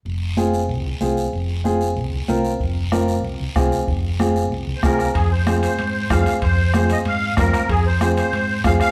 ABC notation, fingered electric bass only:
X:1
M:4/4
L:1/16
Q:1/4=188
K:Fm
V:1 name="Fingered electric bass" clef=bass
F,,,8 C,,2 C,, z C,,4 | F,,,8 C,,2 C,, z C,,4 | F,,,8 C,,2 C,, z C,,4 | F,,,8 C,,2 C,, z C,,4 |
F,,8 A,,4 F,,2 z2 | F,,8 A,,4 F,,2 z2 | F,,8 A,,4 F,,2 z2 |]